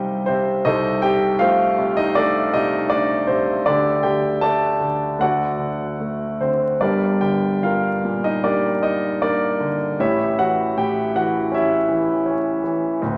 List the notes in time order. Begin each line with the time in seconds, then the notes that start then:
Already playing: C2 C3 G3 D#4 F4 G4 C5 D#5 G5
0.26 C3 C4 C5
0.65 C2 C3 D#4 A4 C5 D#5
1.02 C3 G4 G5
1.39 A3 F4 C5 F5
1.78 C3
1.97 D#4 D#5
2.15 A3 D4 A4 D5
2.53 C3 D#4 D#5
2.89 A3 D4 D5
3.27 C3 C4 C5
3.66 D2 D3 D4 G4 A4 D5
4.03 D3 G4 G5
4.41 A3 A4 D5 A5
4.80 D3
5.19 D2 D3 F#4 A4 D5 F#5
5.59 D3
6.00 A3
6.40 D3 C4 C5
6.81 G1 G2 D4 G4 A#4 D5
7.21 D3 G4 G5
7.63 G2 F4 A#4 F5
8.05 A#2
8.24 D#4 D#5
8.43 A#3 D4 G4 A#4 D5
8.83 D#4 D#5
9.22 A#3 D4 A#4 D5
9.60 D3
9.99 A1 A2 E4 G4 C#5 E5
10.38 E3 F#4 F#5
10.77 A2 G4 G5
11.15 E3 F#4 F#5
11.52 C#4 E4 G4 C#5 E5
11.89 E3
12.26 C#4
12.64 E3
13.02 D1 D2